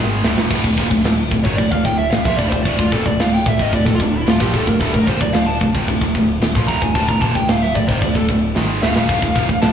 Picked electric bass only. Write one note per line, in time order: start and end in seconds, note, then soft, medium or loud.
0.00 0.22 G#1 medium
0.24 0.36 D1 loud
0.37 0.49 D#1 medium
0.51 0.63 D1 medium
0.65 0.77 D1 medium
0.78 0.90 D#1 medium
0.92 1.04 D1 medium
1.04 1.29 D1 medium
1.32 1.44 D1 medium
1.45 1.57 G#1 medium
1.59 1.71 D1 medium
1.72 1.84 D1 medium
1.85 2.10 D1 medium
2.13 2.25 D1 medium
2.26 2.38 A#1 loud
2.39 2.51 D1 medium
2.53 2.65 D1 medium
2.66 2.78 D1 medium
2.79 2.92 D1 medium
2.93 3.05 D#1 loud
3.06 3.18 D1 medium
3.20 3.45 D1 medium
3.47 3.59 D1 medium
3.60 3.72 G#1 loud
3.74 3.86 D1 medium
3.87 3.99 D1 medium
4.00 4.25 D1 medium
4.27 4.39 D1 medium
4.41 4.53 A#1 loud
4.54 4.66 D1 loud
4.68 4.80 D1 medium
4.81 4.93 D1 medium
4.94 5.06 D1 medium
5.08 5.20 D#1 loud
5.21 5.33 D1 medium
5.35 5.59 D1 medium
5.61 5.74 D1 medium
5.75 5.87 G#1 loud
5.88 6.00 D1 medium
6.02 6.14 D1 medium
6.15 6.40 D1 medium
6.42 6.54 D1 medium
6.56 6.68 A#1 loud
6.69 6.81 D1 loud
6.82 6.94 D1 medium
6.96 7.08 D1 medium
7.09 7.21 D1 medium
7.22 7.34 D#1 loud
7.36 7.48 D1 medium
7.49 7.74 D1 medium
7.76 7.88 D1 medium
7.89 8.01 G#1 loud
8.02 8.15 D1 medium
8.16 8.28 D1 medium
8.29 8.54 D1 medium
8.56 8.81 G#1 loud
8.83 8.95 D1 medium
8.96 9.08 D#1 medium
9.09 9.22 D1 medium
9.23 9.35 D1 medium
9.36 9.48 D#1 medium
9.49 9.62 D1 medium
9.63 9.72 D1 medium